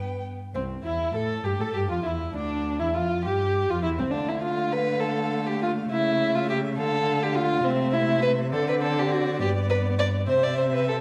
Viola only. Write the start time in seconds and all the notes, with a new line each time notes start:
Already playing: B3
0.55 C4
0.86 E4
1.16 A4
1.45 G4
1.61 A4
1.76 G4
1.91 F4
2.06 E4
2.37 D4
2.80 E4
2.96 F4
3.26 G4
3.70 F4
3.83 E4
3.99 C4
4.14 A3
7.65 A3
8.53 C4
9.40 B3
10.28 C4